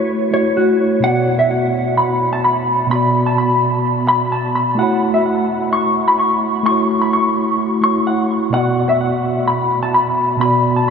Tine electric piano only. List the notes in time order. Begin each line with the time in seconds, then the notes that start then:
Already playing: A3 E4 F#4 C#5
0.31 A3 E4 F#4
0.35 C#5
1.00 B2 B3
1.05 F#4 D5
2.87 B2 B3
2.93 F#4 D5
4.75 A3 E4
4.80 F#4 C#5
6.63 A3 E4
6.69 F#4 C#5
7.81 A3 E4 F#4
7.85 C#5
8.50 B2 B3
8.55 F#4 D5
10.37 B2 B3
10.42 F#4 D5